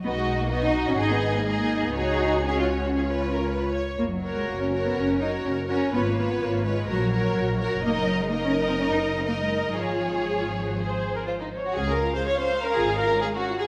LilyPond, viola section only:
\new Staff \with { instrumentName = "Viola section" } { \time 4/4 \key fis \major \tempo 4 = 123 << { dis'4 dis'4 dis'4 dis'4 | fis'4 fis'4 eis'4. r8 | r8 fis'4 fis'4 fis'4 fis'8 | eis'8 eis'4 eis'8 fis'8 fis'4 fis'8 |
\key des \major ees'4 ees'2 ees'4 | f'4 aes'16 f'8 ges'16 aes'16 c''8 bes'16 c''8 des''8 | des'1 | } \\ { r1 | r1 | r1 | r1 |
r1 | r1 | aes16 des'16 f'16 aes'16 f'16 des'16 aes16 des'16 f'16 aes'16 f'16 des'16 aes16 des'16 f'16 aes'16 | } >> }